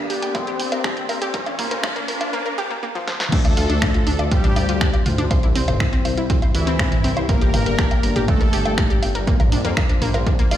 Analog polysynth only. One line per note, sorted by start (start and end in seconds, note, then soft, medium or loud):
0.00 0.25 D4 loud
0.35 0.99 C4 loud
3.32 4.22 A3 loud
4.32 4.96 G3 loud
6.55 7.19 E3 loud
7.29 8.18 A#3 loud
8.28 8.93 A3 loud
10.51 10.57 F4 loud